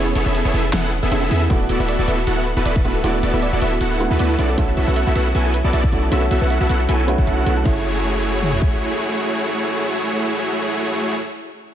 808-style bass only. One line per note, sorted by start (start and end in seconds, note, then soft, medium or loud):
0.00 0.14 E1 medium
0.15 0.24 E1 medium
0.26 0.43 E1 medium
0.45 0.52 E1 medium
0.54 0.71 E1 loud
0.73 1.01 E1 medium
1.03 1.10 E1 medium
1.11 1.29 E1 medium
1.31 1.48 E2 medium
1.50 1.68 D1 medium
1.69 1.78 D1 medium
1.80 1.97 D1 loud
1.99 2.06 D1 medium
2.08 2.25 D1 loud
2.27 2.55 D1 medium
2.57 2.64 D1 medium
2.65 2.83 D1 medium
2.85 3.02 D1 medium
3.04 3.21 D1 medium
3.23 3.31 D1 loud
3.33 3.51 D1 medium
3.53 3.60 D1 medium
3.62 3.79 D1 medium
3.81 4.08 D1 medium
4.10 4.17 D2 medium
4.19 4.37 D2 medium
4.39 4.56 B1 medium
4.58 4.75 B1 medium
4.77 4.85 B1 medium
4.87 5.05 B1 loud
5.07 5.14 B1 medium
5.16 5.33 B1 medium
5.35 5.62 B1 medium
5.64 5.71 B1 medium
5.73 5.91 B1 medium
5.92 6.10 B1 medium
6.12 6.29 B1 medium
6.31 6.39 B1 medium
6.41 6.58 B1 medium
6.60 6.68 B1 medium
6.69 6.87 B1 medium
6.89 7.16 B1 medium
7.18 7.25 B1 medium
7.27 7.44 B1 medium
7.46 7.64 B1 medium
7.66 8.77 F#1 medium